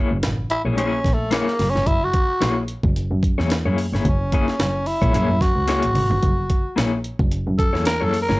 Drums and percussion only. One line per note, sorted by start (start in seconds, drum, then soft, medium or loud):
0.23 snare loud
0.23 closed hi-hat medium
0.50 closed hi-hat medium
0.78 closed hi-hat medium
1.04 kick medium
1.04 snare soft
1.04 closed hi-hat medium
1.31 snare loud
1.31 closed hi-hat medium
1.48 snare soft
1.59 snare soft
1.59 open hi-hat medium
1.76 snare soft
1.86 kick medium
1.86 closed hi-hat medium
2.13 kick medium
2.13 closed hi-hat medium
2.42 snare loud
2.42 closed hi-hat medium
2.68 closed hi-hat medium
2.83 kick medium
2.96 closed hi-hat medium
3.23 kick medium
3.23 closed hi-hat medium
3.40 snare soft
3.50 snare loud
3.50 closed hi-hat medium
3.78 open hi-hat medium
3.95 snare soft
4.05 kick medium
4.05 closed hi-hat medium
4.32 kick medium
4.32 closed hi-hat medium
4.48 snare soft
4.60 snare loud
4.60 closed hi-hat medium
4.86 open hi-hat soft
5.02 kick medium
5.02 closed hi-hat soft
5.14 closed hi-hat medium
5.41 kick medium
5.41 snare soft
5.41 closed hi-hat medium
5.68 snare medium
5.68 closed hi-hat medium
5.83 closed hi-hat medium
5.95 mid tom medium
5.95 open hi-hat medium
6.11 floor tom medium
6.23 kick medium
6.23 closed hi-hat medium
6.50 kick medium
6.50 closed hi-hat medium
6.78 snare loud
6.78 closed hi-hat medium
7.04 closed hi-hat medium
7.19 kick loud
7.32 closed hi-hat medium
7.59 kick medium
7.59 closed hi-hat medium
7.75 snare soft
7.85 snare loud
7.85 closed hi-hat loud
8.14 open hi-hat medium
8.30 snare soft